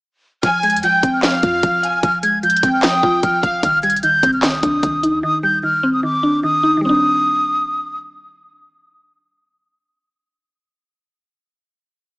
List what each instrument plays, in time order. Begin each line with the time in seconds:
0.43 808-style bass F1, synth pluck F3, violin section G#5, flute F6, kick, closed hi-hat
0.63 synth pluck G#3, flute G#6, closed hi-hat
0.70 808-style bass F2, closed hi-hat
0.77 closed hi-hat
0.83 synth pluck F3, violin section G5, flute G6, closed hi-hat
1.03 808-style bass F1, synth pluck C4, kick, closed hi-hat
1.13 flute F6
1.23 synth pluck F3, violin section F5, flute F6, snare, clap, closed hi-hat
1.43 808-style bass F2, synth pluck F4, kick, closed hi-hat
1.63 808-style bass F1, synth pluck F3, kick, closed hi-hat
1.83 synth pluck F5, violin section G#5, closed hi-hat
2.03 808-style bass F1, synth pluck F3, flute F6, kick, closed hi-hat
2.23 synth pluck G#3, flute G#6, closed hi-hat
2.43 synth pluck F3, flute G6, closed hi-hat
2.50 closed hi-hat
2.56 closed hi-hat
2.63 808-style bass F1, synth pluck C4, violin section G5, kick, closed hi-hat
2.73 flute F6
2.83 synth pluck F3, flute D#6, snare, clap, closed hi-hat
3.03 808-style bass F1, synth pluck F4, kick
3.23 808-style bass F1, synth pluck F3, flute F6, kick, closed hi-hat
3.43 808-style bass F1, violin section F5, synth pluck F5, kick, closed hi-hat
3.63 808-style bass C2, synth pluck D#3, flute F6, kick, closed hi-hat
3.83 synth pluck G3, flute G#6, closed hi-hat
3.90 closed hi-hat
3.96 closed hi-hat
4.03 808-style bass A#1, synth pluck D#3, flute G6, closed hi-hat
4.13 808-style bass C2
4.23 808-style bass C2, synth pluck C4, kick, closed hi-hat
4.33 flute F6
4.43 synth pluck D#3, flute D#6, snare, clap, closed hi-hat
4.63 808-style bass C2, synth pluck D4, kick, closed hi-hat
4.83 808-style bass C2, synth pluck D#3, kick, closed hi-hat
5.03 synth pluck D#4, closed hi-hat
5.13 808-style bass D#2
5.23 synth pluck D#3, flute D#6
5.43 synth pluck G3, flute G6
5.63 synth pluck D#3, flute F6
5.83 synth pluck C4
5.93 flute D#6
6.03 synth pluck D#3, flute D6
6.23 synth pluck D4
6.43 synth pluck D#3, flute D#6
6.63 synth pluck D#4
6.77 synth pluck D#3 G3
6.83 synth pluck C4, flute D#6
6.89 synth pluck D4